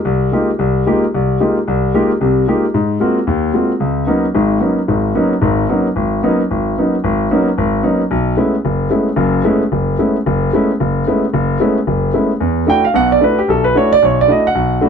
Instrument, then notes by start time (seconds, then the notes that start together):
grand piano
0.05 C2
0.32 G#3 A#3 D#4 F4 G4
0.59 C2
0.86 G#3 A#3 D#4 F4 G4
1.14 C2
1.40 G#3 A#3 D#4 F4 G4
1.68 C2
1.94 G#3 A#3 D#4 F4 G4
2.21 C2 C3
2.48 G#3 A#3 D#4 F4 G4
2.74 G#2
3.00 G#3 A#3 C4 F4 F#4
3.27 D#2
3.54 G#3 A#3 C4 F4 F#4
3.80 C#2
4.07 F#3 A#3 B3 C#4 D#4
4.35 G#1 G#2
4.60 F#3 A#3 B3 C#4 D#4
4.88 G#1 G#2
5.15 F#3 A#3 B3 C#4 D#4
5.41 G#1 G#2
5.69 F#3 A#3 B3 C#4 D#4
5.96 G#1
6.23 F#3 A#3 B3 C#4 D#4
6.51 G#1
6.78 F#3 A#3 B3 C#4 D#4
7.04 G#1
7.31 F#3 A#3 B3 C#4 D#4
7.58 G#1
7.83 F#3 A#3 B3 C#4 D#4
8.11 B1
8.37 G#3 A3 B3 C#4 E4
8.65 F#1
8.90 G#3 A3 B3 C#4 E4
9.16 F#1 F#2
9.44 G#3 A3 B3 C#4 E4
9.72 F#1
9.99 G#3 A3 B3 C#4 E4
10.26 F#1
10.53 G#3 A3 B3 C#4 E4
10.80 F#1
11.07 G#3 A3 B3 C#4 E4
11.34 F#1
11.60 G#3 A3 B3 C#4 E4
11.87 F#1
12.14 G#3 A3 B3 C#4 E4
12.40 E2
12.67 A3 D4 E4 F#4 G5
12.84 F5
12.94 B1 B2 F#5
13.12 D5
13.21 A3 D4 E4 F#4 B4
13.39 G4
13.48 B1 A4
13.64 B4
13.75 A3 D4 E4 F#4 C#5
13.93 D5
14.02 B1 C#5
14.21 D5
14.28 A3 D4 E4 F#4 D#5
14.47 F#5
14.55 B1
14.81 A3 D4 E4 F#4